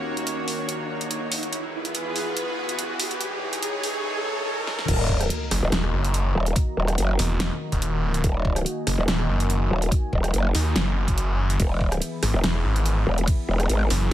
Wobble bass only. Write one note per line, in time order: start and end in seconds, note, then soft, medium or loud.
4.88 5.29 D#1 medium
5.63 5.71 D#1 loud
6.35 6.55 D#1 loud
6.77 6.97 D#1 loud
6.98 7.18 F#1 medium
8.24 8.64 D#1 loud
8.98 9.06 D#1 loud
9.71 9.90 D#1 loud
10.13 10.32 D#1 loud
10.34 10.53 F#1 loud
11.60 12.00 E1 loud
12.34 12.42 E1 loud
13.07 13.26 E1 loud
13.48 13.68 E1 loud
13.69 13.89 G#1 medium